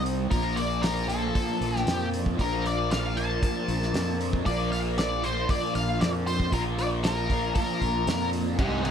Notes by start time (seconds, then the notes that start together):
Already playing: C2 C3 G3 C4 D#4 G4 C5
0.06 open hi-hat
0.30 A#1 A#2 F3 A#3 F4 A#4 D5 A5, kick, open hi-hat
0.56 D5, open hi-hat
0.82 A#4, snare, open hi-hat
1.08 A#2 F3 A#3 A4, open hi-hat
1.35 kick, open hi-hat
1.61 A#1, open hi-hat
1.76 G4, snare
1.86 F2, snare, open hi-hat
2.14 open hi-hat
2.26 kick
2.37 A#1 A#2 F3 A#3, kick, open hi-hat
2.41 A#4
2.66 D5, open hi-hat
2.91 F5, snare, open hi-hat
3.15 A#2 F3 A#3 A5, open hi-hat
3.43 kick, open hi-hat
3.68 A#1, open hi-hat
3.83 snare
3.93 F2, snare, open hi-hat
4.21 open hi-hat
4.33 kick
4.45 A#1 A#2 F3 A#3 D5, kick, open hi-hat
4.72 F5, open hi-hat
4.98 D5, snare, open hi-hat
5.22 A#2 F3 A#3 C5, open hi-hat
5.49 D5, kick, open hi-hat
5.75 A#1 F5, open hi-hat
6.01 F2 D5, snare, open hi-hat
6.27 C5, open hi-hat
6.40 kick
6.51 A#1 A#2 F3 A#3 A#4, kick, open hi-hat
6.78 D5, open hi-hat
7.04 A#4, snare, open hi-hat
7.29 A#2 F3 A#3, kick, open hi-hat
7.55 A#4, kick, open hi-hat
7.82 A#1, kick, open hi-hat
8.07 F2, snare, open hi-hat
8.33 open hi-hat
8.58 C2 G2 C3 D#4 C5, kick, ride
8.83 C3 G4 A#4, ride